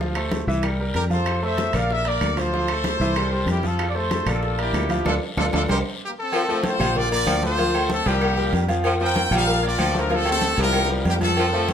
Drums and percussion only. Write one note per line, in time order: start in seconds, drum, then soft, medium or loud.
0.01 high bongo medium
0.01 long guiro medium
0.15 high bongo soft
0.15 high conga soft
0.15 high timbale medium
0.15 claves medium
0.31 high bongo medium
0.31 high conga loud
0.31 high timbale medium
0.31 short guiro medium
0.48 high bongo soft
0.48 high conga soft
0.48 short guiro medium
0.63 high bongo medium
0.63 high conga soft
0.63 high timbale loud
0.63 long guiro medium
0.63 claves medium
0.79 high conga soft
0.94 high bongo soft
0.94 low bongo medium
0.94 high conga medium
0.94 high timbale medium
0.94 short guiro medium
1.10 high bongo soft
1.10 high conga medium
1.10 short guiro medium
1.26 high bongo medium
1.26 high conga soft
1.26 high timbale loud
1.26 long guiro medium
1.26 claves medium
1.42 high bongo soft
1.42 high conga soft
1.58 high bongo medium
1.58 high conga loud
1.58 high timbale medium
1.58 short guiro medium
1.73 high bongo soft
1.73 high conga soft
1.73 low conga medium
1.73 high timbale medium
1.73 short guiro medium
1.73 claves medium
1.90 high bongo medium
1.90 high conga soft
1.90 long guiro medium
2.05 high conga soft
2.05 high timbale medium
2.21 high bongo soft
2.21 low bongo medium
2.21 high conga medium
2.21 high timbale medium
2.21 short guiro medium
2.21 claves medium
2.37 high bongo soft
2.37 high conga medium
2.37 high timbale medium
2.37 short guiro medium
2.53 high bongo medium
2.53 high conga soft
2.53 long guiro medium
2.68 high bongo soft
2.68 high conga soft
2.68 high timbale medium
2.68 claves medium
2.84 high bongo medium
2.84 high conga medium
2.84 high timbale medium
2.84 short guiro medium
3.00 high bongo soft
3.00 high conga soft
3.00 short guiro medium
3.15 high bongo medium
3.15 high conga soft
3.15 high timbale loud
3.15 long guiro medium
3.15 claves medium
3.31 high conga soft
3.47 high bongo soft
3.47 low bongo medium
3.47 high conga medium
3.47 high timbale medium
3.47 short guiro medium
3.63 high bongo soft
3.63 high conga medium
3.63 short guiro medium
3.79 high bongo medium
3.79 high timbale medium
3.79 long guiro medium
3.79 claves medium
3.96 high bongo soft
3.96 high conga soft
4.11 high bongo medium
4.11 high conga loud
4.11 high timbale medium
4.11 short guiro medium
4.27 high bongo soft
4.27 high conga soft
4.27 low conga medium
4.27 high timbale loud
4.27 short guiro medium
4.27 claves medium
4.43 high bongo medium
4.43 high conga soft
4.43 long guiro medium
4.59 high conga soft
4.59 high timbale medium
4.74 high bongo soft
4.74 low bongo medium
4.74 high conga medium
4.74 high timbale medium
4.74 low timbale medium
4.74 short guiro medium
4.74 claves medium
4.89 high bongo soft
4.89 high conga medium
4.89 high timbale medium
4.89 short guiro medium
5.05 low bongo loud
5.05 high conga loud
5.05 high timbale medium
5.05 long guiro loud
5.05 claves medium
5.37 low bongo loud
5.37 high conga loud
5.37 high timbale loud
5.37 long guiro loud
5.37 claves loud
5.53 low bongo loud
5.53 high conga loud
5.53 high timbale loud
5.53 long guiro loud
5.53 claves loud
5.69 low bongo loud
5.69 high conga loud
5.69 high timbale loud
5.69 long guiro loud
5.69 claves medium
6.32 cowbell loud
6.32 high conga soft
6.32 low agogo loud
6.32 long guiro medium
6.32 claves medium
6.48 high conga soft
6.63 cowbell medium
6.63 high conga loud
6.63 low agogo medium
6.63 short guiro medium
6.80 cowbell medium
6.80 high conga soft
6.80 low conga medium
6.80 low agogo loud
6.80 short guiro medium
6.80 claves medium
6.95 cowbell loud
6.95 high conga soft
6.95 low conga medium
6.95 long guiro medium
7.11 high conga soft
7.11 low agogo medium
7.27 cowbell medium
7.27 high conga medium
7.27 low agogo loud
7.27 short guiro medium
7.27 claves medium
7.43 high conga medium
7.43 short guiro medium
7.58 cowbell loud
7.58 low agogo medium
7.58 long guiro medium
7.74 high conga soft
7.74 low agogo loud
7.74 claves medium
7.90 cowbell medium
7.90 high conga loud
7.90 short guiro medium
8.06 cowbell medium
8.06 high conga soft
8.06 low agogo medium
8.06 short guiro medium
8.21 cowbell loud
8.21 high conga soft
8.21 low agogo loud
8.21 long guiro medium
8.21 claves medium
8.37 cowbell medium
8.37 high conga soft
8.53 cowbell medium
8.53 high conga medium
8.53 low agogo medium
8.53 short guiro medium
8.68 cowbell medium
8.68 high conga medium
8.68 low agogo medium
8.68 short guiro medium
8.84 cowbell loud
8.84 low agogo loud
8.84 long guiro medium
8.84 claves medium
9.01 high conga soft
9.16 cowbell medium
9.16 high conga loud
9.16 low agogo medium
9.16 short guiro medium
9.31 cowbell medium
9.31 high conga soft
9.31 low conga medium
9.31 low agogo loud
9.31 short guiro medium
9.31 claves medium
9.47 cowbell loud
9.47 high conga soft
9.47 long guiro medium
9.63 high conga soft
9.63 low agogo medium
9.78 cowbell medium
9.78 high conga medium
9.78 low agogo loud
9.78 short guiro medium
9.78 claves medium
9.95 high conga medium
9.95 short guiro medium
10.10 cowbell loud
10.10 high bongo medium
10.10 high conga soft
10.10 low agogo medium
10.10 long guiro medium
10.25 high conga soft
10.25 low agogo loud
10.25 claves medium
10.32 high bongo loud
10.41 cowbell medium
10.41 high bongo medium
10.41 high conga loud
10.41 short guiro medium
10.57 cowbell medium
10.57 high conga soft
10.57 low agogo medium
10.57 short guiro medium
10.64 low bongo medium
10.73 cowbell loud
10.73 low bongo loud
10.73 high conga soft
10.73 low agogo loud
10.73 long guiro medium
10.73 claves medium
10.85 low bongo loud
10.90 cowbell medium
10.90 high conga soft
11.05 cowbell medium
11.05 low bongo medium
11.05 high conga medium
11.05 low timbale medium
11.05 low agogo medium
11.05 short guiro medium
11.16 low bongo medium
11.21 cowbell medium
11.21 high conga medium
11.21 low agogo medium
11.21 short guiro medium
11.26 low bongo loud
11.37 cowbell loud
11.37 high conga soft
11.37 low agogo loud
11.37 long guiro medium
11.37 claves medium
11.53 high conga soft
11.68 cowbell medium
11.68 high conga loud
11.68 low agogo medium
11.68 short guiro medium